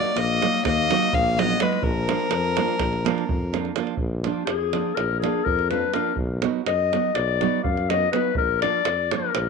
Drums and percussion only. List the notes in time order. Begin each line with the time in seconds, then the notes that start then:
0.05 davul high
0.17 davul high
0.42 davul high
0.54 davul high
0.65 davul high, davul low
0.91 davul high
1.02 davul high
1.13 davul low
1.26 davul high
1.39 davul high
1.50 davul high
1.60 davul high
1.72 davul high
1.83 davul low
2.09 davul high
2.20 davul high
2.31 davul high
2.44 davul high
2.57 davul high
2.68 davul high
2.79 davul high, davul low
2.93 davul high
3.06 davul high
3.18 davul high
3.29 davul low
3.54 davul high
3.65 davul high
3.76 davul high
3.87 davul high
3.97 davul low
4.24 davul high
4.47 davul high
4.73 davul high
4.97 davul high
5.24 davul high
5.46 davul low
5.59 davul high
5.71 davul high
5.94 davul high
6.17 davul low
6.42 davul high
6.67 davul high
6.93 davul high
7.15 davul high
7.41 davul high
7.64 davul low
7.77 davul high
7.90 davul high
8.13 davul high
8.35 davul low
8.62 davul high
8.85 davul high
9.11 davul high
9.35 davul high